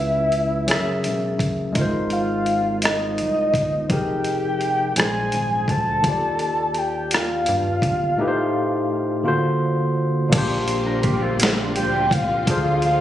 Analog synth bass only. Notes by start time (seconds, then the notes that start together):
Already playing: C#2
0.70 F#1
1.06 E1
1.40 F#1
1.76 G#1
3.20 C2
3.54 G1
3.90 F1
4.98 A#1
5.34 G#1
5.68 D2
6.04 D#2
7.48 G2
7.82 G1
10.33 A#1
11.77 D2
12.12 C2
12.48 D2